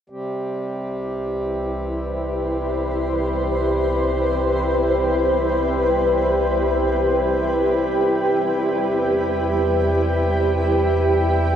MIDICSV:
0, 0, Header, 1, 4, 480
1, 0, Start_track
1, 0, Key_signature, 0, "major"
1, 0, Tempo, 500000
1, 11095, End_track
2, 0, Start_track
2, 0, Title_t, "Ambient pad"
2, 0, Program_c, 0, 92
2, 79, Note_on_c, 0, 64, 69
2, 514, Note_on_c, 0, 71, 60
2, 555, Note_on_c, 0, 67, 69
2, 1052, Note_on_c, 0, 72, 58
2, 2299, Note_on_c, 0, 79, 69
2, 7688, Note_off_c, 0, 72, 0
2, 9819, Note_on_c, 0, 74, 67
2, 11095, Note_off_c, 0, 64, 0
2, 11095, Note_off_c, 0, 67, 0
2, 11095, Note_off_c, 0, 71, 0
2, 11095, Note_off_c, 0, 74, 0
2, 11095, Note_off_c, 0, 79, 0
2, 11095, End_track
3, 0, Start_track
3, 0, Title_t, "Harmonium"
3, 0, Program_c, 1, 20
3, 93, Note_on_c, 1, 55, 60
3, 94, Note_on_c, 1, 48, 57
3, 11095, Note_off_c, 1, 48, 0
3, 11095, Note_off_c, 1, 55, 0
3, 11095, End_track
4, 0, Start_track
4, 0, Title_t, "Synth drone"
4, 0, Program_c, 2, 95
4, 96, Note_on_c, 2, 36, 80
4, 7644, Note_off_c, 2, 36, 0
4, 7699, Note_on_c, 2, 40, 76
4, 11095, Note_off_c, 2, 40, 0
4, 11095, End_track
0, 0, End_of_file